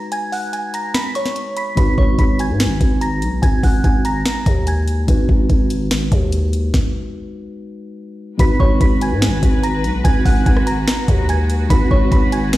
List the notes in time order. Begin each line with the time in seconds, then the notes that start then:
Already playing: G#3 D#4 F#4 B4
0.12 G#5 G#6, closed hi-hat
0.32 F#5 F#6, open hi-hat
0.53 G#5 G#6, closed hi-hat
0.74 A#5 A#6, closed hi-hat
0.94 B5 B6, finger snap, snare
1.15 C#5 C#6, closed hi-hat
1.26 snare
1.36 closed hi-hat
1.57 B5 B6, closed hi-hat
1.76 G#1 G#3 D#4 F#4 B4 B5 B6, kick, closed hi-hat
1.98 G#1 C#5 C#6, kick
2.19 G#1 B5 B6, kick, closed hi-hat
2.39 G#5 G#6, closed hi-hat
2.50 G#2
2.60 finger snap, snare, closed hi-hat
2.65 G#1
2.81 G#1, kick, closed hi-hat
3.01 A#5 A#6, closed hi-hat
3.22 B1, closed hi-hat
3.42 G#1 G#5 G#6, kick, closed hi-hat
3.63 G#1 F#5 F#6, kick, open hi-hat
3.84 G#1 G#5 G#6, kick, closed hi-hat
4.05 A#5 A#6, closed hi-hat
4.26 finger snap, snare
4.46 D#2, kick, closed hi-hat
4.67 G#5 G#6, closed hi-hat
4.88 closed hi-hat
5.07 G#1 G#3 D#4 F#4 B4, kick, closed hi-hat
5.29 G#1, kick
5.50 G#1, kick, closed hi-hat
5.70 closed hi-hat
5.91 finger snap, snare, closed hi-hat
6.12 D#2, kick, closed hi-hat
6.32 closed hi-hat
6.53 closed hi-hat
6.74 kick, snare
8.38 G#1 G#3 D#4 F#4 B4 B5 B6, kick, closed hi-hat
8.60 G#1 C#5 C#6, kick
8.81 G#1 B5 B6, kick, closed hi-hat
9.01 G#5 G#6, closed hi-hat
9.12 G#2
9.22 finger snap, snare, closed hi-hat
9.27 G#1
9.43 G#1, kick, closed hi-hat
9.63 A#5 A#6, closed hi-hat
9.84 B1, closed hi-hat
10.04 G#1 G#5 G#6, kick, closed hi-hat
10.25 G#1 F#5 F#6, kick, open hi-hat
10.46 G#1 G#5 G#6, kick, closed hi-hat
10.57 cross-stick
10.67 A#5 A#6, closed hi-hat
10.88 finger snap, snare
11.08 D#2, kick, closed hi-hat
11.29 G#5 G#6, closed hi-hat
11.50 closed hi-hat
11.69 G#1 G#3 D#4 F#4 B4 B5 B6, kick, closed hi-hat
11.91 G#1 C#5 C#6, kick
12.12 G#1 B5 B6, kick, closed hi-hat
12.32 G#5 G#6, closed hi-hat
12.53 finger snap, snare, closed hi-hat